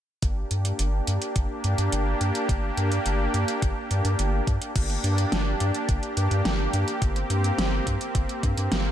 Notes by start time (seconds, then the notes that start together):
0.22 G1 A#3 D4 G4, kick, closed hi-hat
0.51 G2, closed hi-hat
0.65 closed hi-hat
0.79 G1, closed hi-hat
1.07 G2, closed hi-hat
1.22 closed hi-hat
1.36 G1, kick, closed hi-hat
1.64 G2, closed hi-hat
1.78 G2, closed hi-hat
1.92 G1, closed hi-hat
2.21 G2, closed hi-hat
2.35 closed hi-hat
2.49 G1, kick, closed hi-hat
2.77 G2, closed hi-hat
2.92 closed hi-hat
3.06 G1, closed hi-hat
3.34 G2, closed hi-hat
3.48 closed hi-hat
3.62 G1, kick, closed hi-hat
3.91 G2, closed hi-hat
4.05 G2, closed hi-hat
4.19 G1, closed hi-hat
4.47 G2, kick, closed hi-hat
4.62 closed hi-hat
4.76 G1 A#3 D4 G4, kick, closed hi-hat, crash
4.90 closed hi-hat
5.04 G2, closed hi-hat
5.18 closed hi-hat
5.32 G1, snare, closed hi-hat
5.60 G2, closed hi-hat
5.74 closed hi-hat
5.89 G1, kick, closed hi-hat
6.03 closed hi-hat
6.17 G2, closed hi-hat
6.31 G2, closed hi-hat
6.45 G1, snare, closed hi-hat
6.73 G2, closed hi-hat
6.88 closed hi-hat
7.02 G1 C4, kick, closed hi-hat
7.16 closed hi-hat
7.30 G2, closed hi-hat
7.44 closed hi-hat
7.58 G1, snare, closed hi-hat
7.87 G2, kick, closed hi-hat
8.01 closed hi-hat
8.15 G1, kick, closed hi-hat
8.29 closed hi-hat
8.43 G2, kick, closed hi-hat
8.57 G2, closed hi-hat
8.72 G1, snare, closed hi-hat